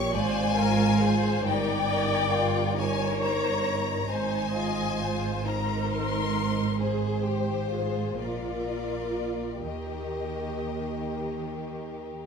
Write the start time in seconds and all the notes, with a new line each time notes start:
Already playing: A#1 A#2 G4 C#5 C#6
0.13 G#1 G#2 F4 C5 D5 G#5
0.57 A#4 C5
1.00 G#4 C5
1.44 G1 G2 D#4 A#4 D5 G5
1.87 D#4
2.32 F4
2.77 D#4 A#4 C#5 G#5
3.21 A#5
4.09 G#1 G#2 D#4 C5 G#5
4.54 F4 D#5
4.99 F4 C5
5.45 D#4 A#4 A#5
5.91 C6
6.80 G#4 C5
7.25 G4
7.70 F4 G#4
8.18 A#1 A#2 F4 A#4 D5
9.65 D#2 D#3 G4 A#4 D#5